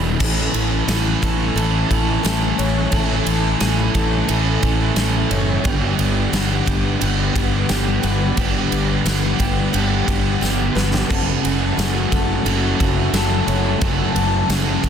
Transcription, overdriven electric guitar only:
0.00 0.19 E3 medium
0.00 0.19 G#3 medium
0.00 0.18 D4 medium
0.00 0.18 E4 medium
0.19 1.55 A2 medium
0.19 0.88 E3 medium
0.19 0.88 A3 loud
0.19 0.89 C#4 loud
0.19 0.90 A4 medium
0.88 1.55 E3 medium
0.88 1.55 A3 medium
0.88 1.56 C#4 medium
0.88 1.57 A4 medium
1.55 2.24 A2 medium
1.55 2.21 E3 loud
1.55 1.91 A3 medium
1.55 1.90 C#4 loud
1.55 1.88 A4 loud
1.89 2.23 A3 medium
1.89 2.24 C#4 medium
1.89 2.24 A4 medium
2.23 2.91 E3 medium
2.23 2.92 A3 medium
2.23 2.92 C#4 medium
2.23 2.93 A4 medium
2.91 3.94 A2 medium
2.91 3.58 E3 loud
2.91 3.59 A3 loud
2.91 3.60 C#4 loud
2.91 3.61 A4 loud
3.59 4.27 E3 medium
3.59 4.28 A3 medium
3.59 4.28 C#4 medium
3.59 4.29 A4 medium
4.27 4.96 A2 medium
4.27 4.94 E3 medium
4.27 4.64 A3 loud
4.27 4.62 C#4 loud
4.27 4.61 A4 loud
4.62 4.96 A3 medium
4.62 4.97 C#4 medium
4.62 4.98 A4 medium
4.96 5.63 E3 medium
4.96 5.63 A3 medium
4.96 5.64 C#4 medium
4.96 5.64 A4 medium
5.63 6.99 G2 medium
5.63 6.67 D3 loud
5.63 6.32 G3 loud
5.63 6.33 B3 loud
5.63 6.34 D4 loud
5.63 6.35 G4 loud
6.33 7.00 G3 medium
6.33 7.00 B3 medium
6.33 7.01 D4 medium
6.33 7.02 G4 medium
7.00 7.69 G2 medium
7.00 7.69 D3 loud
7.00 7.36 G3 medium
7.00 7.35 B3 medium
7.00 7.34 D4 medium
7.00 7.33 G4 loud
7.34 7.67 G3 medium
7.34 7.68 B3 medium
7.34 7.69 D4 medium
7.34 7.70 G4 medium
7.68 8.37 G3 medium
7.68 8.38 B3 medium
7.68 8.38 D4 medium
7.68 8.39 G4 medium
8.37 9.40 G2 medium
8.37 9.40 D3 loud
8.37 9.04 G3 medium
8.37 9.06 B3 medium
8.37 9.06 D4 loud
8.37 9.07 G4 loud
9.05 9.73 G3 medium
9.05 9.74 B3 medium
9.05 9.74 D4 medium
9.05 9.74 G4 medium
9.73 10.42 G2 medium
9.73 10.42 D3 loud
9.73 10.08 G3 loud
9.73 10.07 B3 medium
9.73 10.06 D4 loud
9.73 10.05 G4 medium
10.06 10.39 G3 medium
10.06 10.40 B3 medium
10.06 10.41 D4 medium
10.06 10.42 G4 medium
10.40 11.07 G3 medium
10.40 11.08 B3 medium
10.40 11.08 D4 medium
10.40 11.09 G4 medium
11.08 12.45 F#2 medium
11.08 12.12 C#3 loud
11.08 11.76 F#3 loud
11.08 11.77 A3 medium
11.08 11.78 C#4 loud
11.08 11.79 F#4 medium
11.77 12.45 F#3 medium
11.77 12.47 A3 medium
11.77 12.47 C#4 medium
11.77 12.47 F#4 medium
12.45 13.14 F#2 medium
12.45 13.14 C#3 medium
12.45 12.81 F#3 medium
12.45 12.81 A3 loud
12.45 12.79 C#4 medium
12.45 12.78 F#4 loud
12.79 13.12 F#3 medium
12.79 13.15 A3 medium
12.79 13.15 C#4 medium
12.79 13.15 F#4 medium
13.13 13.81 F#3 medium
13.13 13.83 A3 medium
13.13 13.83 C#4 medium
13.13 13.83 F#4 medium
13.81 14.83 F#2 loud
13.81 14.84 C#3 loud
13.81 14.48 F#3 loud
13.81 14.50 A3 loud
13.81 14.50 C#4 loud
13.81 14.51 F#4 loud
14.49 14.89 F#3 medium
14.49 14.89 A3 medium
14.49 14.89 C#4 medium
14.49 14.89 F#4 medium

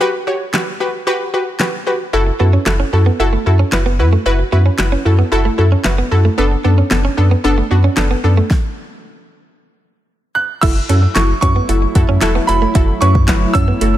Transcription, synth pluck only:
0.01 0.19 F#4 loud
0.01 0.19 G4 loud
0.01 0.19 B4 loud
0.27 0.45 F#4 medium
0.27 0.46 G4 medium
0.27 0.46 C#5 loud
0.54 0.72 F#4 medium
0.54 0.72 G4 medium
0.54 0.72 B4 loud
0.80 0.99 F#4 medium
0.80 0.99 G4 medium
0.80 0.99 B4 loud
1.07 1.25 F#4 loud
1.07 1.25 G4 loud
1.07 1.25 B4 loud
1.34 1.52 F#4 medium
1.34 1.52 G4 medium
1.34 1.52 B4 loud
1.60 1.78 F#4 medium
1.60 1.78 G4 medium
1.60 1.79 B4 loud
1.87 2.05 F#4 medium
1.87 2.05 G4 medium
1.87 2.05 B4 loud
2.13 2.31 E4 loud
2.13 2.31 F#4 loud
2.13 2.32 A4 loud
2.39 2.58 E4 medium
2.39 2.58 F#4 medium
2.39 2.58 A4 medium
2.66 2.84 E4 medium
2.66 2.85 F#4 medium
2.66 2.85 A4 loud
2.93 3.11 E4 medium
2.93 3.11 F#4 medium
2.93 3.11 A4 loud
3.20 3.38 E4 loud
3.20 3.38 F#4 loud
3.20 3.38 A4 loud
3.46 3.64 E4 medium
3.46 3.64 F#4 medium
3.46 3.65 A4 loud
3.73 3.91 E4 medium
3.73 3.91 F#4 medium
3.73 3.91 B4 medium
3.99 4.17 E4 medium
3.99 4.18 F#4 medium
3.99 4.18 B4 loud
4.26 4.44 E4 loud
4.26 4.44 F#4 loud
4.26 4.44 B4 loud
4.52 4.70 E4 medium
4.52 4.71 F#4 medium
4.52 4.71 B4 medium
4.79 4.97 E4 medium
4.79 4.97 F#4 medium
4.79 4.97 B4 loud
5.05 5.24 E4 medium
5.05 5.24 F#4 medium
5.05 5.24 A4 loud
5.32 5.50 E4 loud
5.32 5.50 F#4 loud
5.32 5.50 A4 loud
5.58 5.76 E4 medium
5.58 5.77 F#4 medium
5.58 5.77 A4 loud
5.85 6.03 E4 medium
5.85 6.03 F#4 medium
5.85 6.03 B4 medium
6.11 6.30 E4 medium
6.11 6.30 F#4 medium
6.11 6.30 A4 loud
6.38 6.56 B3 loud
6.38 6.56 D4 loud
6.38 6.56 A4 loud
6.64 6.83 B3 medium
6.64 6.83 D4 medium
6.64 6.83 A4 medium
6.91 7.09 B3 medium
6.91 7.09 D4 medium
6.91 7.09 A4 loud
7.17 7.36 B3 medium
7.17 7.36 D4 medium
7.17 7.36 A4 loud
7.44 7.62 B3 loud
7.44 7.62 D4 loud
7.44 7.63 A4 loud
7.71 7.89 B3 medium
7.71 7.89 D4 medium
7.71 7.89 F#4 loud
7.97 8.15 B3 medium
7.97 8.16 D4 medium
7.97 8.16 A4 loud
8.24 8.42 B3 medium
8.24 8.42 D4 medium
8.24 8.42 A4 loud
10.62 10.81 E4 loud
10.62 10.81 F#4 medium
10.62 10.81 A4 loud
10.89 11.07 E4 medium
10.89 11.08 F#4 medium
10.89 11.08 A4 medium
11.16 11.34 E4 medium
11.16 11.34 F#4 medium
11.16 11.34 A4 medium
11.42 11.61 E4 medium
11.42 11.61 F#4 medium
11.42 11.61 B4 medium
11.69 11.87 E4 medium
11.69 11.87 F#4 medium
11.69 11.87 A4 medium
11.95 12.14 E4 loud
11.95 12.14 F#4 medium
11.95 12.14 A4 loud
12.22 12.40 E4 loud
12.22 12.40 F#4 loud
12.22 12.40 A4 loud
12.49 12.67 E4 medium
12.49 12.67 F#4 medium
12.49 12.67 A4 medium
12.75 12.93 E4 medium
12.75 12.93 F#4 medium
12.75 12.94 A4 loud
13.02 13.20 E4 medium
13.02 13.20 F#4 medium
13.02 13.20 B4 medium
13.28 13.46 E4 medium
13.28 13.47 F#4 medium
13.28 13.47 B4 medium
13.55 13.73 E4 medium
13.55 13.73 F#4 medium
13.55 13.73 A4 medium
13.81 13.98 E4 medium
13.81 13.98 F#4 medium
13.81 13.98 A4 medium

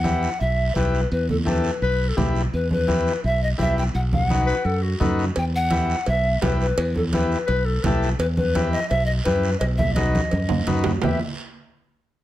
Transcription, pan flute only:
0.00 0.42 F#5 loud
0.40 0.77 E5 loud
0.75 1.11 B4 medium
1.12 1.28 B4 medium
1.30 1.36 A4 medium
1.47 1.80 B4 medium
2.54 2.70 B4 medium
2.72 3.21 B4 medium
3.25 3.41 E5 loud
3.43 3.49 D#5 medium
3.61 3.76 E5 loud
3.78 3.84 G5 loud
3.95 4.01 F#5 medium
4.14 4.26 F5 loud
4.26 4.80 F#5 loud
5.38 5.44 G5 loud
5.55 6.10 F#5 loud
6.08 6.42 E5 loud
6.42 6.59 B4 medium
6.61 6.93 B4 medium
6.96 7.02 A4 medium
7.14 7.47 B4 medium
8.20 8.26 B4 medium
8.37 8.70 B4 loud
8.72 8.88 D#5 loud
8.89 9.05 E5 loud
9.06 9.12 D#5 loud
9.24 9.58 B4 loud
9.59 9.65 D#5 medium
9.77 9.95 E5 loud
9.94 10.66 D#5 loud
11.03 11.20 E5 medium

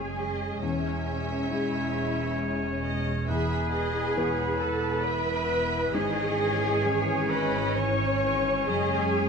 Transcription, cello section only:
0.00 0.63 G#4 medium
0.62 1.50 C#4 medium
1.52 2.85 E4 medium
3.28 4.57 G#4 loud
4.61 5.05 A4 medium
5.04 5.95 B4 loud
5.94 7.29 G#4 loud
7.30 7.77 B4 loud
7.76 8.69 C#5 loud
8.69 9.29 G#4 loud

